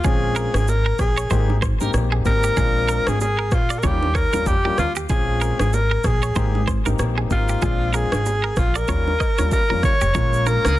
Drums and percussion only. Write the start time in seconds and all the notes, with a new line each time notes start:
0.04 kick, low conga, shaker
0.36 shaker
0.54 cross-stick, low bongo, shaker
0.68 high bongo, shaker
0.99 kick, cross-stick, high bongo, shaker
1.17 shaker
1.30 kick, low conga, shaker
1.50 low bongo
1.62 kick, cross-stick, shaker
1.80 low bongo, shaker
1.94 cross-stick, high bongo, shaker
2.25 kick, low conga, shaker
2.43 shaker
2.57 kick, low conga, shaker
2.88 shaker
3.07 cross-stick, low bongo, shaker
3.21 high bongo, shaker
3.51 kick, cross-stick, high bongo, shaker
3.70 shaker
3.83 kick, low conga, shaker
4.03 low bongo
4.15 kick, cross-stick, shaker
4.33 low bongo, shaker
4.46 kick, high bongo, shaker
4.78 cross-stick, low conga, shaker
4.96 shaker
5.09 kick, low conga, shaker
5.41 shaker
5.59 cross-stick, low bongo, shaker
5.73 high bongo, shaker
6.04 kick, cross-stick, high bongo, shaker
6.23 shaker
6.36 kick, low conga, shaker
6.55 low bongo
6.67 kick, cross-stick, shaker
6.86 low bongo, shaker
6.99 cross-stick, high bongo, shaker
7.31 kick, low conga, shaker
7.49 shaker
7.62 kick, low conga, shaker
7.94 shaker
8.12 cross-stick, low bongo, shaker
8.26 high bongo, shaker
8.56 kick, cross-stick, high bongo, shaker
8.75 shaker
8.88 kick, low conga, shaker
9.07 low bongo
9.20 kick, cross-stick, shaker
9.38 low bongo, shaker
9.51 kick, high bongo, shaker
9.83 kick, cross-stick, low conga, shaker
10.01 shaker
10.15 kick, low conga, shaker
10.33 shaker
10.46 low bongo, shaker
10.65 cross-stick, low bongo, shaker